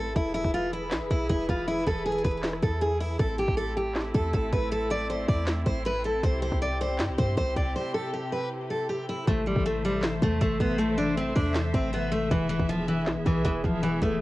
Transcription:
Already playing: 808-style bass A1, string section A3 C4 E4, steel-string acoustic guitar A4
0.16 808-style bass E1, string section E3 E4 G#4 B4, steel-string acoustic guitar E4, kick, closed hi-hat
0.34 steel-string acoustic guitar E4, closed hi-hat
0.44 808-style bass E1, kick
0.54 steel-string acoustic guitar F4, closed hi-hat
0.73 steel-string acoustic guitar E4, closed hi-hat
0.91 808-style bass B1, snare, clap, closed hi-hat
1.01 808-style bass E1
1.11 808-style bass B1, steel-string acoustic guitar E4, kick, closed hi-hat
1.29 808-style bass E1, steel-string acoustic guitar E4, kick, closed hi-hat
1.49 808-style bass E1, steel-string acoustic guitar F4, kick, closed hi-hat
1.68 steel-string acoustic guitar E4, closed hi-hat
1.87 808-style bass E1, steel-string acoustic guitar A4, kick, closed hi-hat
2.06 steel-string acoustic guitar G#4, closed hi-hat
2.12 closed hi-hat
2.18 closed hi-hat
2.24 808-style bass E1, steel-string acoustic guitar B4, kick, closed hi-hat, open hi-hat
2.31 closed hi-hat
2.37 closed hi-hat
2.43 snare, clap, closed hi-hat
2.53 cross-stick
2.63 808-style bass E2, steel-string acoustic guitar A4, kick, closed hi-hat
2.81 steel-string acoustic guitar G#4, closed hi-hat
3.01 steel-string acoustic guitar E4, open hi-hat
3.19 808-style bass A1, string section A3 C4, steel-string acoustic guitar A4, kick, closed hi-hat
3.38 steel-string acoustic guitar G4, closed hi-hat
3.48 808-style bass A1, kick
3.57 steel-string acoustic guitar A4, closed hi-hat
3.77 steel-string acoustic guitar G4, closed hi-hat
3.95 snare, clap, closed hi-hat
4.14 808-style bass E2, steel-string acoustic guitar A4, kick, closed hi-hat
4.33 808-style bass A1, steel-string acoustic guitar A4, kick, closed hi-hat
4.53 808-style bass A1, steel-string acoustic guitar B4, kick, closed hi-hat
4.72 steel-string acoustic guitar A4, closed hi-hat
4.90 steel-string acoustic guitar D5, closed hi-hat
5.10 steel-string acoustic guitar C5, closed hi-hat
5.28 808-style bass E2, steel-string acoustic guitar D5, kick, open hi-hat
5.47 snare, clap, closed hi-hat
5.66 808-style bass A1, steel-string acoustic guitar C5, kick, closed hi-hat
5.85 steel-string acoustic guitar B4, closed hi-hat
6.04 steel-string acoustic guitar A4, closed hi-hat
6.23 808-style bass C2, string section C3 G4, steel-string acoustic guitar C5, kick, closed hi-hat
6.42 steel-string acoustic guitar C5, closed hi-hat
6.52 808-style bass C2, kick
6.62 steel-string acoustic guitar D5, closed hi-hat
6.81 steel-string acoustic guitar C5, closed hi-hat
6.99 808-style bass G2, snare, clap, closed hi-hat
7.09 808-style bass C2
7.18 808-style bass G2, steel-string acoustic guitar C5, kick, closed hi-hat
7.37 808-style bass C2, steel-string acoustic guitar C5, kick, closed hi-hat
7.56 808-style bass C2, steel-string acoustic guitar D5, kick, closed hi-hat
7.76 steel-string acoustic guitar C5
7.94 steel-string acoustic guitar A4
8.14 steel-string acoustic guitar G4
8.32 steel-string acoustic guitar B4
8.70 steel-string acoustic guitar A4
8.89 steel-string acoustic guitar G4
9.09 steel-string acoustic guitar E4
9.25 808-style bass A1, harp C3 E3 A3, string section A3 A4 C5 E5, steel-string acoustic guitar A3, kick, closed hi-hat
9.30 harp E4
9.46 steel-string acoustic guitar G3, closed hi-hat
9.54 808-style bass A1, harp C3 E3 A3, kick
9.59 harp E4
9.66 steel-string acoustic guitar A3, closed hi-hat
9.82 harp C3 E3 A3, steel-string acoustic guitar G3, closed hi-hat
9.87 harp E4
10.03 snare, clap, closed hi-hat
10.20 808-style bass E2, harp C3 E3 A3, steel-string acoustic guitar A3, kick, closed hi-hat
10.25 harp E4
10.41 808-style bass A1, steel-string acoustic guitar A3, kick, closed hi-hat
10.60 808-style bass A1, steel-string acoustic guitar B3, kick, closed hi-hat
10.76 harp C3 E3 A3, steel-string acoustic guitar A3, closed hi-hat
10.81 harp E4
10.98 steel-string acoustic guitar D4, closed hi-hat
11.05 harp C3 E3 A3
11.10 harp E4
11.17 steel-string acoustic guitar C4, closed hi-hat
11.34 808-style bass E2, harp C3 E3 A3, steel-string acoustic guitar D4, kick, open hi-hat
11.39 harp E4
11.54 snare, clap, closed hi-hat
11.72 808-style bass A1, harp C3 E3 A3, steel-string acoustic guitar C4, kick, closed hi-hat
11.77 harp E4
11.93 steel-string acoustic guitar B3, closed hi-hat
12.12 steel-string acoustic guitar A3, closed hi-hat
12.29 808-style bass E1, harp B2 E3 G#3, string section E3 B3 G#4, steel-string acoustic guitar E3, kick, closed hi-hat
12.33 harp E4
12.49 steel-string acoustic guitar E3, closed hi-hat
12.57 808-style bass E1, harp B2 E3 G#3, kick
12.62 harp D4
12.69 steel-string acoustic guitar F3, closed hi-hat
12.86 harp B2 E3 G#3, steel-string acoustic guitar E3, closed hi-hat
12.90 harp E4
13.06 808-style bass B1, snare, clap, closed hi-hat
13.17 808-style bass E1
13.24 808-style bass B1, harp B2 E3 G#3, steel-string acoustic guitar E3, kick, closed hi-hat
13.29 harp B3
13.45 808-style bass E1, steel-string acoustic guitar E3, kick, closed hi-hat
13.64 808-style bass E1, steel-string acoustic guitar F3, kick, closed hi-hat
13.81 harp B2 E3 G#3, steel-string acoustic guitar E3, closed hi-hat
13.85 harp E4
14.02 808-style bass E1, steel-string acoustic guitar A3, kick, closed hi-hat
14.09 harp B2 E3 G#3
14.14 harp E4

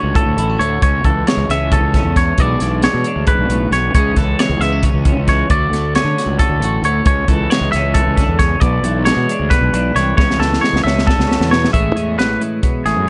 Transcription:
Already playing: clean electric guitar D3 A3 C#4 F#4 C#5
0.03 fingered electric bass C#2
0.15 clean electric guitar A2 A4, kick, closed hi-hat
0.26 fingered electric bass D2
0.37 fingered electric bass A1, clean electric guitar E4, closed hi-hat
0.50 clean electric guitar F#4
0.59 fingered electric bass D2, clean electric guitar A3 C#5, closed hi-hat
0.82 fingered electric bass C#2, clean electric guitar C#3 C#5, kick, closed hi-hat
1.04 fingered electric bass C#2, clean electric guitar E3 A4, kick, closed hi-hat
1.27 clean electric guitar G#3 C#5, snare, closed hi-hat
1.37 fingered electric bass C#2
1.49 fingered electric bass C#2, clean electric guitar C#4 E5, snare, closed hi-hat
1.72 clean electric guitar C#3 A4, kick, closed hi-hat
1.81 fingered electric bass C#2
1.94 clean electric guitar C#4, kick, snare, closed hi-hat
2.04 fingered electric bass E2
2.16 clean electric guitar E3 C#5, kick, snare, closed hi-hat
2.38 fingered electric bass B1, clean electric guitar B2 E3 G#3 D4 G#4 D5, kick, closed hi-hat
2.60 fingered electric bass B1, clean electric guitar E3, snare, closed hi-hat
2.82 clean electric guitar G#3 C#5, snare, closed hi-hat
2.94 fingered electric bass B2
3.04 clean electric guitar D4, closed hi-hat
3.16 fingered electric bass D2
3.27 clean electric guitar G#2 B4, kick, closed hi-hat
3.37 fingered electric bass B1
3.49 fingered electric bass B1, clean electric guitar A2, closed hi-hat
3.71 fingered electric bass B1, clean electric guitar B2 C#5, snare, closed hi-hat
3.94 fingered electric bass C#2, clean electric guitar C#3 E3 G#3 C#4 G#4 C#5, kick, closed hi-hat
4.16 fingered electric bass C#2, clean electric guitar E3 A4, kick, snare, closed hi-hat
4.39 clean electric guitar G#3 C#5, snare, closed hi-hat
4.49 fingered electric bass C#2
4.59 fingered electric bass C#2, clean electric guitar B3 E5, snare, closed hi-hat
4.72 clean electric guitar C#4
4.83 clean electric guitar C#3, kick, closed hi-hat
4.94 fingered electric bass C#2
5.05 clean electric guitar C#4, kick, closed hi-hat
5.17 fingered electric bass C#2
5.28 clean electric guitar E3 C#5, kick, snare, closed hi-hat
5.50 fingered electric bass D2, clean electric guitar D3 A3 F#4 D5, kick, closed hi-hat
5.72 fingered electric bass D2, clean electric guitar A3, snare, closed hi-hat
5.95 clean electric guitar C#4 C#5, snare, closed hi-hat
6.04 fingered electric bass D3
6.18 clean electric guitar F#4, snare, closed hi-hat
6.26 fingered electric bass C#2
6.39 clean electric guitar A2 A4, kick, closed hi-hat
6.50 fingered electric bass D2
6.60 fingered electric bass A1, closed hi-hat
6.64 clean electric guitar F#4
6.82 fingered electric bass D2, clean electric guitar A3 C#5, closed hi-hat
7.06 fingered electric bass C#2, clean electric guitar C#3 C#5, kick, closed hi-hat
7.28 fingered electric bass C#2, clean electric guitar E3 A4, kick, closed hi-hat
7.50 clean electric guitar G#3 C#5, snare, closed hi-hat
7.61 fingered electric bass C#2
7.72 fingered electric bass C#2, clean electric guitar C#4 E5, snare, closed hi-hat
7.94 clean electric guitar E3 A4, kick, closed hi-hat
8.07 fingered electric bass C#2
8.17 clean electric guitar D3, kick, snare, closed hi-hat
8.28 fingered electric bass E2
8.39 clean electric guitar C#3 C#5, kick, snare, closed hi-hat
8.60 fingered electric bass B1, clean electric guitar B2 D5, kick, closed hi-hat
8.84 fingered electric bass B1, clean electric guitar E3, closed hi-hat
9.05 clean electric guitar G#3 C#5, snare, closed hi-hat
9.16 fingered electric bass B2
9.29 clean electric guitar D4, closed hi-hat
9.40 fingered electric bass D2
9.50 clean electric guitar B2 B4, kick, snare, closed hi-hat
9.61 fingered electric bass B1
9.73 fingered electric bass B1, clean electric guitar D4, closed hi-hat
9.95 fingered electric bass C2, clean electric guitar E3 C#5, snare, closed hi-hat
10.17 fingered electric bass C#2, clean electric guitar C#3 C#5, kick, snare
10.31 snare
10.39 fingered electric bass C#2, clean electric guitar E3 A4, snare
10.53 snare
10.61 clean electric guitar G#3 C#5, snare
10.73 fingered electric bass C#2, snare
10.84 fingered electric bass C#2, clean electric guitar C#4 E5, snare
10.99 snare
11.06 clean electric guitar D3 A4, kick, snare
11.18 fingered electric bass C#2, snare
11.28 clean electric guitar C#3, snare
11.40 fingered electric bass E2, snare
11.51 clean electric guitar B2 C#5, snare
11.65 snare
11.73 fingered electric bass A1, clean electric guitar A2 E3 G#3 C#4 G#4 E5, kick, closed hi-hat
11.96 fingered electric bass E2, clean electric guitar C#4, closed hi-hat
12.18 fingered electric bass A1, clean electric guitar G#3 B4, snare, closed hi-hat
12.41 clean electric guitar E3, closed hi-hat
12.63 clean electric guitar B2, kick, closed hi-hat
12.86 fingered electric bass A1, clean electric guitar A2 G#4, snare, closed hi-hat
12.96 fingered electric bass F#2

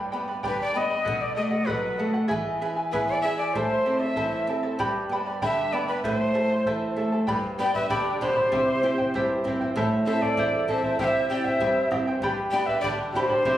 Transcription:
Already playing: nylon-string guitar G2, charango G4 B4 D5 G5 B5
0.12 nylon-string guitar B3, charango B4 D5 G5 B5
0.28 charango B4 D5 B5
0.43 nylon-string guitar D3, charango G4 B4 D5 G5 B5, bombo low
0.48 quena B4
0.61 quena D5
0.74 nylon-string guitar B3, charango B4 D5 G5 B5, quena D#5
0.90 charango B4 D5 B5
1.05 nylon-string guitar B2, charango F#4 A4 B4 D#5 F#5, bombo low
1.21 quena D5
1.35 nylon-string guitar A3, charango F#4 A4 D#5 F#5, quena D#5
1.42 quena D5
1.50 charango F#4 A4 F#5, quena D#5
1.66 nylon-string guitar F#3, charango F#4 A4 B4 D#5 F#5, quena B4, bombo low
1.98 nylon-string guitar A3, charango F#4 A4 D#5 F#5
2.14 charango F#4 A4 F#5
2.28 nylon-string guitar E3, charango E4 G#4 B4 E5 G#5, bombo low
2.61 charango E4 B4 E5 G#5, nylon-string guitar G#4
2.76 charango E4 B4 G#5
2.92 nylon-string guitar B3, charango E4 G#4 B4 E5 G#5, quena B4, bombo low
3.07 quena D5
3.21 charango E4 B4 E5 G#5, nylon-string guitar G#4, quena E5
3.38 charango E4 B4 G#5, quena D5
3.53 nylon-string guitar A2, charango E4 A4 C5 E5 A5, quena C5, bombo low
3.85 nylon-string guitar C4, charango E4 A4 E5 A5
3.99 charango E4 A4 A5, quena E5
4.16 nylon-string guitar E3, charango E4 A4 C5 E5 A5, bombo low
4.47 nylon-string guitar C4, charango E4 A4 E5 A5
4.63 charango E4 A4 A5
4.79 nylon-string guitar G2, charango G4 B4 D5 G5 B5, bombo low
5.09 nylon-string guitar B3, charango B4 D5 G5 B5
5.26 charango B4 D5 B5
5.42 nylon-string guitar D3, charango G4 B4 D5 G5 B5, quena E5, bombo low
5.73 nylon-string guitar B3, charango B4 D5 G5 B5, quena D5
5.88 quena B4, charango B4 D5 B5
6.03 nylon-string guitar A2, charango E4 A4 C5 E5 A5, quena B4, bombo low
6.14 quena C5
6.34 nylon-string guitar A3, charango E4 A4 E5 A5
6.50 charango E4 A4 A5
6.66 nylon-string guitar E3, charango E4 A4 C5 E5 A5, bombo low
6.96 nylon-string guitar A3, charango E4 A4 E5 A5
7.12 charango E4 A4 A5
7.27 nylon-string guitar G2, charango G4 B4 D5 G5 B5, bombo low
7.59 nylon-string guitar B3 D4 G4, charango B4 D5 G5 B5, pan flute D5, quena G5
7.74 pan flute B4, charango B4 D5 B5, quena E5, bombo low
7.90 nylon-string guitar D3, charango G4 B4 D5 G5 B5, pan flute G4, quena D5, bombo low
8.21 nylon-string guitar B2 D4 G4, pan flute G4, charango B4 D5 G5 B5, quena C5, bombo low
8.36 charango B4 D5 B5, bombo low
8.52 nylon-string guitar C3, charango E4 G4 C5 E5 G5, bombo low
8.83 nylon-string guitar C4 E4 G4, charango E4 C5 E5 G5
8.98 charango E4 C5 G5, bombo low
9.14 nylon-string guitar G2, charango E4 G4 C5 E5 G5, bombo low
9.44 nylon-string guitar C4 E4 G4, charango E4 C5 E5 G5, bombo low
9.61 charango E4 C5 G5, bombo low
9.76 nylon-string guitar A2, charango E4 A4 C5 E5 A5, bombo low
10.06 nylon-string guitar C4 E4 A4, charango E4 C5 E5 A5, pan flute C5, quena E5
10.21 charango E4 C5 A5, pan flute A4, quena D5, bombo low
10.37 nylon-string guitar E2, charango E4 A4 C5 E5 A5, bombo low
10.68 nylon-string guitar C4 E4 A4, charango E4 C5 E5 A5, pan flute C5, quena E5, bombo low
10.83 charango E4 C5 A5, bombo low
10.99 nylon-string guitar C3, charango E4 G4 C5 E5 G5, pan flute C5, quena G5, bombo low
11.04 quena E5
11.29 nylon-string guitar C4 E4 G4, charango E4 C5 E5 G5, pan flute D5, quena G5
11.45 charango E4 C5 G5, pan flute C5, quena E5, bombo low
11.60 nylon-string guitar G2, charango E4 G4 C5 E5 G5, bombo low
11.91 nylon-string guitar C4 E4 G4, charango E4 C5 E5 G5, bombo rim, bombo low
12.07 charango E4 C5 G5
12.22 nylon-string guitar G2, charango G4 B4 D5 G5 B5, bombo low
12.51 nylon-string guitar B3 D4 G4, charango B4 D5 G5, pan flute D5, quena G5
12.55 charango B5
12.66 pan flute B4, charango D5 B5, quena E5, bombo low
12.71 charango B4
12.81 nylon-string guitar D3, pan flute G4, charango G4 B4 G5 B5, quena D5, bombo low
12.85 charango D5
13.11 pan flute F#4, quena D5, charango G5, bombo low
13.15 nylon-string guitar B2 D4 G4, charango B4 D5 B5, quena C5
13.29 pan flute G4, charango B4 D5 B5, bombo low
13.45 nylon-string guitar C3, charango E4 G4 C5 E5 G5, bombo low

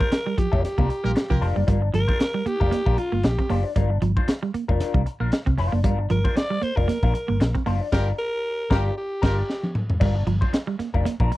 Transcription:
Already playing: alto saxophone A#4
0.00 clean electric guitar D4 F4 C5, kick
0.11 muted clean electric guitar stroke, snare, closed hi-hat
0.26 clean electric guitar G3, muted clean electric guitar stroke
0.38 clean electric guitar F3, alto saxophone G4, muted fingered electric bass stroke, kick, closed hi-hat
0.52 fingered electric bass F1, clean electric guitar D4 F4 A#4, kick
0.63 alto saxophone G4, muted clean electric guitar stroke, muted fingered electric bass stroke, snare, closed hi-hat
0.78 fingered electric bass C2, clean electric guitar A#3 D4 F4 A#4, kick
0.90 muted clean electric guitar stroke, closed hi-hat
1.04 fingered electric bass A#1, clean electric guitar G3, horn section F4 G4 A#4, muted clean electric guitar stroke
1.16 muted clean electric guitar stroke, snare, closed hi-hat
1.30 fingered electric bass C2, clean electric guitar F3, horn section F4 G4 A#4, muted clean electric guitar stroke, kick
1.41 fingered electric bass F1, clean electric guitar D4 F4 C5, muted clean electric guitar stroke, open hi-hat
1.56 fingered electric bass F#1, clean electric guitar G3, muted clean electric guitar stroke
1.67 fingered electric bass G1, clean electric guitar G3 D4 F4 A#4, kick, closed hi-hat
1.82 muted clean electric guitar stroke
1.94 fingered electric bass G1, clean electric guitar F3, alto saxophone A#4, muted clean electric guitar stroke, closed hi-hat
2.08 clean electric guitar D4 F4 C5, kick
2.20 muted clean electric guitar stroke, snare, closed hi-hat
2.34 clean electric guitar G3, muted clean electric guitar stroke
2.46 clean electric guitar A#3, alto saxophone G4, muted fingered electric bass stroke, closed hi-hat
2.60 fingered electric bass F1, clean electric guitar D4 F4 A#4, kick
2.71 clean electric guitar A#3, muted fingered electric bass stroke, muted clean electric guitar stroke, snare, closed hi-hat
2.86 fingered electric bass A#1, clean electric guitar D4 F4 A#4, kick
2.98 alto saxophone F4, muted clean electric guitar stroke, closed hi-hat
3.12 fingered electric bass G1, clean electric guitar A#3, muted clean electric guitar stroke
3.23 fingered electric bass A#1, alto saxophone G4, muted clean electric guitar stroke, snare, closed hi-hat
3.38 clean electric guitar C4, muted clean electric guitar stroke, kick
3.49 fingered electric bass F#1, clean electric guitar A#3 D4 F4 C5, open hi-hat
3.65 muted clean electric guitar stroke
3.76 fingered electric bass G1, clean electric guitar G3 D4 F4 A#4, kick, closed hi-hat
3.90 muted clean electric guitar stroke
4.02 fingered electric bass G1, clean electric guitar F3, muted clean electric guitar stroke, closed hi-hat
4.17 clean electric guitar D4 F4 C5, kick
4.28 muted clean electric guitar stroke, snare, closed hi-hat
4.42 clean electric guitar G3, muted clean electric guitar stroke
4.54 clean electric guitar A#3, muted fingered electric bass stroke, closed hi-hat
4.68 fingered electric bass F1, clean electric guitar D4 F4 A#4, kick
4.80 clean electric guitar D4 F4 A#4, muted fingered electric bass stroke, snare, closed hi-hat
4.94 fingered electric bass C2, clean electric guitar G3, kick
5.06 muted clean electric guitar stroke, closed hi-hat
5.20 fingered electric bass A#1, clean electric guitar A#3 D4 F4 A#4
5.32 muted clean electric guitar stroke, snare, closed hi-hat
5.46 fingered electric bass C2, clean electric guitar C4, muted clean electric guitar stroke, kick
5.58 fingered electric bass F1, clean electric guitar D4 F4 C5, muted clean electric guitar stroke, open hi-hat
5.72 fingered electric bass F#1, clean electric guitar A#3, muted clean electric guitar stroke
5.84 fingered electric bass G1, clean electric guitar G3 D4 F4 A#4, kick, closed hi-hat
5.99 muted clean electric guitar stroke
6.10 fingered electric bass G1, clean electric guitar F3, alto saxophone A#4, muted clean electric guitar stroke, closed hi-hat
6.24 clean electric guitar D4 F4 C5, kick
6.36 alto saxophone D5, muted clean electric guitar stroke, snare, closed hi-hat
6.50 clean electric guitar G3, muted clean electric guitar stroke
6.62 clean electric guitar A#3, alto saxophone C5, muted fingered electric bass stroke, closed hi-hat
6.76 fingered electric bass F1, clean electric guitar D4 F4 A#4, alto saxophone A#4, kick
6.88 clean electric guitar A#3, muted clean electric guitar stroke, muted fingered electric bass stroke, snare, closed hi-hat
7.03 fingered electric bass A#1, clean electric guitar D4 F4 A#4, kick
7.14 muted clean electric guitar stroke, closed hi-hat
7.28 fingered electric bass G1, clean electric guitar A#3, muted clean electric guitar stroke
7.40 fingered electric bass A#1, muted clean electric guitar stroke, snare, closed hi-hat
7.55 clean electric guitar C4, muted clean electric guitar stroke, kick
7.66 fingered electric bass F#1, clean electric guitar A#3 D4 F4 C5, open hi-hat
7.81 muted clean electric guitar stroke
7.92 fingered electric bass G1, clean electric guitar D4 F4 A#4, horn section F4 G4 A#4, kick, snare, crash
8.19 alto saxophone A#4
8.71 fingered electric bass G1, clean electric guitar D4 F4 A#4, horn section F4 G4 A#4, alto saxophone G4, kick, snare
8.98 alto saxophone G4
9.22 fingered electric bass G1, clean electric guitar D4 F4 A#4, horn section F4 G4 A#4, kick, snare, crash
9.50 snare
9.63 high tom
9.75 mid tom
9.90 floor tom
10.00 fingered electric bass G1, clean electric guitar G3 D4 F4 A#4, kick, crash
10.15 muted clean electric guitar stroke
10.27 fingered electric bass G1, clean electric guitar F3, muted clean electric guitar stroke, closed hi-hat
10.41 clean electric guitar D4 F4 C5, kick
10.53 muted clean electric guitar stroke, snare, closed hi-hat
10.67 clean electric guitar G3, muted clean electric guitar stroke
10.79 clean electric guitar A#3, muted fingered electric bass stroke, snare, closed hi-hat
10.94 fingered electric bass F1, clean electric guitar D4 F4 A#4, kick
11.05 clean electric guitar A#3, muted clean electric guitar stroke, muted fingered electric bass stroke, snare, closed hi-hat
11.20 fingered electric bass A#1, clean electric guitar D4 F4 A#4, kick
11.32 muted clean electric guitar stroke, closed hi-hat

